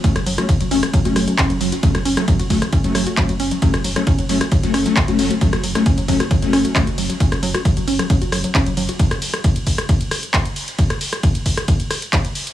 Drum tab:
RD |xxxxxxxxxxxxxxxx|xxxxxxxxxxxxxxxx|xxxxxxxxxxxxxxxx|xxxxxxxxxxxxxxxx|
HH |xxoxxxoxxxoxxxox|xxoxxxoxxxoxxxox|xxoxxxoxxxoxxxox|xxoxxxoxxxoxxxox|
CP |------------x---|------------x---|------------x---|------------x---|
SD |-r-r---r--r-----|-r-r---r--r-----|-r-r---r--r-----|-r-r---r--r-----|
BD |o---o---o---o---|o---o-o-o---o---|o---o---o---o---|o---o-o-o---o---|

RD |xxxxxxxxxxxxxxxx|xxxxxxxxxxxxxxxx|xxxxxxxxxxxxxxxx|
HH |xxoxxxoxxxoxxxox|xxoxxxoxxxoxxxox|xxoxxxoxxxoxxxox|
CP |------------x---|------------x---|------------x---|
SD |-r-r---r--r-----|-r-r---r--r-----|-r-r---r--r-----|
BD |o---o---o---o---|o---o-o-o---o---|o---o-o-o---o---|